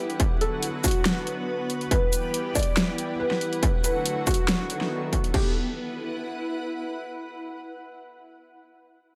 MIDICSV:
0, 0, Header, 1, 5, 480
1, 0, Start_track
1, 0, Key_signature, 1, "minor"
1, 0, Tempo, 428571
1, 221, Time_signature, 4, 2, 24, 8
1, 10248, End_track
2, 0, Start_track
2, 0, Title_t, "Felt piano"
2, 0, Program_c, 0, 0
2, 0, Note_on_c, 0, 67, 94
2, 371, Note_off_c, 0, 67, 0
2, 462, Note_on_c, 0, 69, 86
2, 732, Note_off_c, 0, 69, 0
2, 941, Note_on_c, 0, 66, 94
2, 2051, Note_off_c, 0, 66, 0
2, 2140, Note_on_c, 0, 71, 96
2, 2771, Note_off_c, 0, 71, 0
2, 2861, Note_on_c, 0, 74, 99
2, 3491, Note_off_c, 0, 74, 0
2, 3581, Note_on_c, 0, 71, 90
2, 4211, Note_off_c, 0, 71, 0
2, 4302, Note_on_c, 0, 71, 84
2, 4572, Note_off_c, 0, 71, 0
2, 4782, Note_on_c, 0, 66, 99
2, 5892, Note_off_c, 0, 66, 0
2, 5980, Note_on_c, 0, 67, 86
2, 6162, Note_off_c, 0, 67, 0
2, 10248, End_track
3, 0, Start_track
3, 0, Title_t, "Ambient pad"
3, 0, Program_c, 1, 92
3, 0, Note_on_c, 1, 64, 72
3, 0, Note_on_c, 1, 71, 79
3, 0, Note_on_c, 1, 78, 75
3, 223, Note_on_c, 1, 59, 75
3, 992, Note_off_c, 1, 64, 0
3, 992, Note_off_c, 1, 78, 0
3, 2143, Note_on_c, 1, 64, 74
3, 2789, Note_off_c, 1, 59, 0
3, 2840, Note_on_c, 1, 78, 71
3, 4062, Note_on_c, 1, 62, 79
3, 4451, Note_off_c, 1, 78, 0
3, 4452, Note_off_c, 1, 64, 0
3, 4452, Note_off_c, 1, 71, 0
3, 4498, Note_on_c, 1, 69, 77
3, 5022, Note_off_c, 1, 62, 0
3, 5022, Note_on_c, 1, 59, 86
3, 5412, Note_off_c, 1, 69, 0
3, 5982, Note_off_c, 1, 59, 0
3, 5982, Note_on_c, 1, 64, 77
3, 6058, Note_on_c, 1, 71, 76
3, 6131, Note_on_c, 1, 78, 76
3, 7856, Note_off_c, 1, 64, 0
3, 7856, Note_off_c, 1, 78, 0
3, 7857, Note_off_c, 1, 71, 0
3, 10248, End_track
4, 0, Start_track
4, 0, Title_t, "Analog synth pad"
4, 0, Program_c, 2, 89
4, 0, Note_on_c, 2, 52, 82
4, 0, Note_on_c, 2, 55, 74
4, 0, Note_on_c, 2, 59, 74
4, 0, Note_on_c, 2, 67, 88
4, 201, Note_off_c, 2, 52, 0
4, 201, Note_off_c, 2, 55, 0
4, 201, Note_off_c, 2, 67, 0
4, 222, Note_on_c, 2, 50, 82
4, 222, Note_on_c, 2, 54, 75
4, 222, Note_on_c, 2, 66, 86
4, 2122, Note_off_c, 2, 50, 0
4, 2122, Note_off_c, 2, 54, 0
4, 2123, Note_off_c, 2, 66, 0
4, 2142, Note_on_c, 2, 52, 79
4, 2142, Note_on_c, 2, 55, 72
4, 2142, Note_on_c, 2, 67, 88
4, 4015, Note_off_c, 2, 59, 0
4, 4043, Note_off_c, 2, 52, 0
4, 4043, Note_off_c, 2, 55, 0
4, 4043, Note_off_c, 2, 67, 0
4, 4061, Note_on_c, 2, 54, 68
4, 4061, Note_on_c, 2, 57, 73
4, 4061, Note_on_c, 2, 66, 88
4, 4062, Note_on_c, 2, 50, 76
4, 5008, Note_off_c, 2, 54, 0
4, 5011, Note_off_c, 2, 57, 0
4, 5012, Note_off_c, 2, 50, 0
4, 5021, Note_on_c, 2, 54, 69
4, 5021, Note_on_c, 2, 59, 70
4, 5022, Note_on_c, 2, 51, 76
4, 5962, Note_off_c, 2, 66, 0
4, 5969, Note_off_c, 2, 59, 0
4, 5972, Note_off_c, 2, 51, 0
4, 5972, Note_off_c, 2, 54, 0
4, 5982, Note_on_c, 2, 52, 74
4, 5982, Note_on_c, 2, 55, 69
4, 5982, Note_on_c, 2, 59, 64
4, 5983, Note_on_c, 2, 67, 80
4, 6204, Note_off_c, 2, 52, 0
4, 6205, Note_off_c, 2, 55, 0
4, 6205, Note_off_c, 2, 59, 0
4, 6205, Note_off_c, 2, 67, 0
4, 10248, End_track
5, 0, Start_track
5, 0, Title_t, "Drums"
5, 109, Note_on_c, 9, 42, 36
5, 221, Note_off_c, 9, 42, 0
5, 221, Note_on_c, 9, 36, 120
5, 221, Note_on_c, 9, 42, 78
5, 333, Note_off_c, 9, 36, 0
5, 333, Note_off_c, 9, 42, 0
5, 461, Note_on_c, 9, 42, 51
5, 573, Note_off_c, 9, 42, 0
5, 700, Note_on_c, 9, 42, 75
5, 812, Note_off_c, 9, 42, 0
5, 941, Note_on_c, 9, 36, 99
5, 941, Note_on_c, 9, 42, 47
5, 941, Note_on_c, 9, 82, 82
5, 983, Note_off_c, 9, 42, 0
5, 983, Note_on_c, 9, 42, 64
5, 1020, Note_off_c, 9, 42, 0
5, 1020, Note_on_c, 9, 42, 75
5, 1053, Note_off_c, 9, 36, 0
5, 1053, Note_off_c, 9, 82, 0
5, 1132, Note_off_c, 9, 42, 0
5, 1181, Note_on_c, 9, 38, 110
5, 1181, Note_on_c, 9, 42, 75
5, 1293, Note_off_c, 9, 38, 0
5, 1293, Note_off_c, 9, 42, 0
5, 1422, Note_on_c, 9, 42, 53
5, 1534, Note_off_c, 9, 42, 0
5, 1901, Note_on_c, 9, 42, 50
5, 2013, Note_off_c, 9, 42, 0
5, 2029, Note_on_c, 9, 42, 35
5, 2141, Note_off_c, 9, 42, 0
5, 2141, Note_on_c, 9, 36, 114
5, 2142, Note_on_c, 9, 42, 81
5, 2253, Note_off_c, 9, 36, 0
5, 2254, Note_off_c, 9, 42, 0
5, 2381, Note_on_c, 9, 42, 53
5, 2381, Note_on_c, 9, 82, 66
5, 2493, Note_off_c, 9, 42, 0
5, 2493, Note_off_c, 9, 82, 0
5, 2621, Note_on_c, 9, 42, 80
5, 2733, Note_off_c, 9, 42, 0
5, 2861, Note_on_c, 9, 36, 99
5, 2861, Note_on_c, 9, 42, 47
5, 2861, Note_on_c, 9, 82, 80
5, 2904, Note_off_c, 9, 42, 0
5, 2904, Note_on_c, 9, 42, 63
5, 2941, Note_off_c, 9, 42, 0
5, 2941, Note_on_c, 9, 42, 81
5, 2973, Note_off_c, 9, 36, 0
5, 2973, Note_off_c, 9, 82, 0
5, 3053, Note_off_c, 9, 42, 0
5, 3102, Note_on_c, 9, 38, 114
5, 3102, Note_on_c, 9, 42, 77
5, 3214, Note_off_c, 9, 38, 0
5, 3214, Note_off_c, 9, 42, 0
5, 3341, Note_on_c, 9, 42, 55
5, 3453, Note_off_c, 9, 42, 0
5, 3709, Note_on_c, 9, 38, 37
5, 3821, Note_off_c, 9, 38, 0
5, 3822, Note_on_c, 9, 42, 51
5, 3934, Note_off_c, 9, 42, 0
5, 3950, Note_on_c, 9, 42, 37
5, 4061, Note_on_c, 9, 36, 113
5, 4062, Note_off_c, 9, 42, 0
5, 4062, Note_on_c, 9, 42, 82
5, 4173, Note_off_c, 9, 36, 0
5, 4174, Note_off_c, 9, 42, 0
5, 4302, Note_on_c, 9, 42, 55
5, 4302, Note_on_c, 9, 82, 63
5, 4414, Note_off_c, 9, 42, 0
5, 4414, Note_off_c, 9, 82, 0
5, 4542, Note_on_c, 9, 42, 83
5, 4654, Note_off_c, 9, 42, 0
5, 4781, Note_on_c, 9, 36, 103
5, 4782, Note_on_c, 9, 42, 51
5, 4782, Note_on_c, 9, 82, 77
5, 4824, Note_off_c, 9, 42, 0
5, 4824, Note_on_c, 9, 42, 65
5, 4861, Note_off_c, 9, 42, 0
5, 4861, Note_on_c, 9, 42, 84
5, 4893, Note_off_c, 9, 36, 0
5, 4894, Note_off_c, 9, 82, 0
5, 4973, Note_off_c, 9, 42, 0
5, 5021, Note_on_c, 9, 38, 116
5, 5021, Note_on_c, 9, 42, 82
5, 5133, Note_off_c, 9, 38, 0
5, 5133, Note_off_c, 9, 42, 0
5, 5262, Note_on_c, 9, 42, 55
5, 5374, Note_off_c, 9, 42, 0
5, 5389, Note_on_c, 9, 38, 37
5, 5501, Note_off_c, 9, 38, 0
5, 5741, Note_on_c, 9, 36, 63
5, 5742, Note_on_c, 9, 42, 55
5, 5853, Note_off_c, 9, 36, 0
5, 5854, Note_off_c, 9, 42, 0
5, 5870, Note_on_c, 9, 42, 39
5, 5981, Note_on_c, 9, 36, 110
5, 5982, Note_off_c, 9, 42, 0
5, 5982, Note_on_c, 9, 49, 89
5, 6093, Note_off_c, 9, 36, 0
5, 6094, Note_off_c, 9, 49, 0
5, 10248, End_track
0, 0, End_of_file